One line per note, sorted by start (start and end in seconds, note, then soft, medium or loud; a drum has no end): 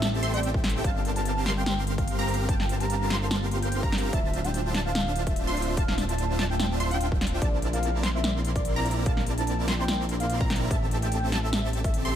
0.00 0.82 A1 medium
0.00 4.09 G3 medium
0.00 0.21 C4 medium
0.00 0.81 C4 medium
0.00 0.21 G4 medium
0.00 0.21 A4 medium
0.00 0.21 E5 medium
0.00 0.35 E5 loud
0.00 0.21 A5 loud
0.00 snare loud
0.00 closed hi-hat medium
0.23 0.32 C4 medium
0.23 0.32 G4 medium
0.23 0.32 A4 medium
0.23 0.32 E5 medium
0.23 0.32 C6 medium
0.23 closed hi-hat medium
0.33 0.82 C4 medium
0.33 0.82 G4 medium
0.33 0.82 A4 medium
0.33 0.51 D5 loud
0.33 0.82 E5 medium
0.33 0.82 G5 loud
0.33 closed hi-hat medium
0.43 closed hi-hat medium
0.54 kick loud
0.64 snare medium
0.64 closed hi-hat soft
0.69 closed hi-hat medium
0.84 4.11 G1 medium
0.84 4.10 A#3 medium
0.84 1.44 C4 medium
0.84 7.38 F4 loud
0.84 1.44 G4 medium
0.84 1.44 A#4 medium
0.84 1.44 F5 medium
0.84 1.02 F5 loud
0.84 1.44 A5 medium
0.84 1.44 A5 loud
0.84 kick loud
0.84 closed hi-hat medium
1.05 closed hi-hat medium
1.16 1.39 A5 medium
1.16 closed hi-hat medium
1.25 closed hi-hat medium
1.46 2.16 C4 medium
1.46 2.16 G4 medium
1.46 2.16 A#4 medium
1.46 2.16 F5 medium
1.46 2.16 C6 loud
1.46 snare medium
1.46 closed hi-hat medium
1.57 1.80 G5 loud
1.66 snare loud
1.66 closed hi-hat medium
1.87 closed hi-hat medium
1.98 2.16 F5 loud
1.98 kick loud
1.98 closed hi-hat medium
2.08 closed hi-hat medium
2.19 2.46 C4 medium
2.19 2.46 G4 medium
2.19 2.46 A#4 medium
2.19 2.46 F5 medium
2.19 2.46 A#5 medium
2.28 closed hi-hat soft
2.34 closed hi-hat medium
2.48 3.08 C4 medium
2.48 3.08 F5 medium
2.48 2.82 G5 loud
2.48 3.08 A5 loud
2.48 kick loud
2.48 closed hi-hat medium
2.60 snare medium
2.69 closed hi-hat medium
2.80 3.23 A#5 medium
2.80 closed hi-hat medium
2.90 closed hi-hat medium
3.10 3.81 C4 medium
3.10 3.81 G4 medium
3.10 3.81 A#4 medium
3.10 3.81 F5 medium
3.10 3.81 C6 loud
3.10 snare medium
3.10 closed hi-hat medium
3.21 3.45 A5 medium
3.31 snare loud
3.31 closed hi-hat medium
3.51 closed hi-hat medium
3.62 3.80 G5 loud
3.62 closed hi-hat medium
3.72 closed hi-hat medium
3.83 4.11 C4 medium
3.83 4.11 G4 medium
3.83 4.11 A#4 medium
3.83 4.11 F5 medium
3.83 4.11 A#5 medium
3.83 kick loud
3.92 snare medium
3.92 closed hi-hat soft
3.98 closed hi-hat medium
4.13 7.40 D1 medium
4.13 7.38 D3 medium
4.13 7.39 A3 medium
4.13 7.39 C4 medium
4.13 4.72 D4 medium
4.13 4.72 F4 medium
4.13 4.72 C5 medium
4.13 7.39 D5 medium
4.13 4.46 E5 loud
4.13 4.72 E5 medium
4.13 4.72 A5 medium
4.13 4.72 A5 loud
4.13 kick loud
4.13 closed hi-hat medium
4.33 closed hi-hat medium
4.44 4.68 G5 medium
4.44 closed hi-hat medium
4.54 closed hi-hat medium
4.74 5.45 D4 medium
4.74 5.45 F4 medium
4.74 5.45 C5 medium
4.74 5.45 E5 medium
4.74 5.45 A5 loud
4.74 snare medium
4.74 closed hi-hat medium
4.85 5.28 F5 loud
4.95 snare loud
4.95 closed hi-hat medium
5.16 closed hi-hat medium
5.27 5.44 E5 medium
5.27 kick loud
5.27 closed hi-hat medium
5.36 closed hi-hat medium
5.47 5.75 D4 medium
5.47 5.75 F4 medium
5.47 5.75 C5 medium
5.47 5.75 E5 medium
5.47 5.75 C6 medium
5.57 closed hi-hat medium
5.62 closed hi-hat medium
5.77 6.37 D4 medium
5.77 6.37 F4 medium
5.77 6.37 C5 medium
5.77 5.95 F5 loud
5.77 6.37 A5 loud
5.77 kick loud
5.77 closed hi-hat medium
5.88 snare medium
5.98 snare medium
5.98 closed hi-hat medium
6.09 6.32 A5 loud
6.09 closed hi-hat medium
6.18 closed hi-hat medium
6.39 6.78 D4 medium
6.39 6.78 F4 medium
6.39 6.78 C5 medium
6.39 6.78 E5 medium
6.39 6.78 A5 loud
6.39 snare medium
6.39 closed hi-hat medium
6.50 6.73 G5 loud
6.60 snare loud
6.60 closed hi-hat medium
6.80 6.90 D4 medium
6.80 6.90 F4 medium
6.80 6.90 C5 medium
6.80 6.90 E5 medium
6.80 6.90 C6 medium
6.80 closed hi-hat medium
6.91 7.39 D4 medium
6.91 7.39 F4 medium
6.91 7.39 C5 medium
6.91 7.39 E5 medium
6.91 7.09 F5 medium
6.91 7.39 G5 loud
6.91 closed hi-hat medium
7.01 closed hi-hat medium
7.12 kick loud
7.21 snare medium
7.21 closed hi-hat medium
7.27 closed hi-hat medium
7.42 10.69 A#1 medium
7.42 10.67 A#3 medium
7.42 10.67 D4 loud
7.42 7.60 D5 loud
7.42 8.01 A5 medium
7.42 kick loud
7.42 closed hi-hat medium
7.62 closed hi-hat medium
7.73 7.97 F5 loud
7.73 closed hi-hat medium
7.83 closed hi-hat medium
8.03 8.74 C4 medium
8.03 8.74 E4 medium
8.03 8.74 A#4 medium
8.03 8.74 D5 medium
8.03 8.74 C6 loud
8.03 snare medium
8.03 closed hi-hat medium
8.15 8.38 E5 loud
8.24 snare loud
8.24 closed hi-hat medium
8.45 closed hi-hat medium
8.56 8.73 D5 loud
8.56 kick loud
8.56 closed hi-hat medium
8.65 closed hi-hat medium
8.76 9.04 C4 medium
8.76 9.04 E4 medium
8.76 9.04 A#4 medium
8.76 9.04 D5 medium
8.76 9.04 A#5 loud
8.76 9.04 A#5 medium
8.86 closed hi-hat medium
8.91 closed hi-hat medium
9.06 9.65 C4 medium
9.06 9.65 E4 medium
9.06 9.65 A#4 medium
9.06 9.65 D5 medium
9.06 9.24 F5 loud
9.06 9.65 A5 medium
9.06 9.66 A5 loud
9.06 kick loud
9.06 closed hi-hat medium
9.17 snare medium
9.26 closed hi-hat medium
9.38 9.61 A5 loud
9.38 closed hi-hat medium
9.47 closed hi-hat medium
9.68 10.38 C4 loud
9.68 10.38 E4 medium
9.68 10.38 A#4 medium
9.68 10.38 D5 medium
9.68 10.38 C6 loud
9.68 snare medium
9.68 closed hi-hat medium
9.79 10.02 G5 loud
9.88 snare loud
9.88 closed hi-hat medium
10.09 closed hi-hat medium
10.20 10.37 F5 medium
10.20 closed hi-hat medium
10.30 closed hi-hat medium
10.40 10.68 C4 medium
10.40 10.68 E4 medium
10.40 10.68 A#4 medium
10.40 10.68 D5 medium
10.40 10.68 A#5 medium
10.40 kick loud
10.50 snare medium
10.50 closed hi-hat medium
10.56 closed hi-hat medium
10.70 12.16 A1 medium
10.70 12.16 G3 medium
10.70 12.16 C4 medium
10.70 11.30 C4 medium
10.70 11.30 G4 medium
10.70 11.30 A4 medium
10.70 10.89 E5 loud
10.70 11.30 E5 medium
10.70 11.30 A5 loud
10.70 11.30 A5 medium
10.70 kick loud
10.70 closed hi-hat medium
10.91 closed hi-hat medium
11.02 11.26 G5 loud
11.02 closed hi-hat medium
11.12 closed hi-hat medium
11.32 12.03 C4 medium
11.32 12.03 G4 medium
11.32 12.03 A4 medium
11.32 12.03 E5 medium
11.32 12.03 A5 loud
11.32 snare medium
11.32 closed hi-hat medium
11.43 11.67 E5 medium
11.53 snare loud
11.53 closed hi-hat medium
11.73 closed hi-hat medium
11.84 12.02 E5 loud
11.84 kick loud
11.84 closed hi-hat medium
11.94 closed hi-hat medium
12.05 12.16 C4 medium
12.05 12.16 G4 medium
12.05 12.16 A4 medium
12.05 12.16 E5 medium
12.05 12.16 C6 medium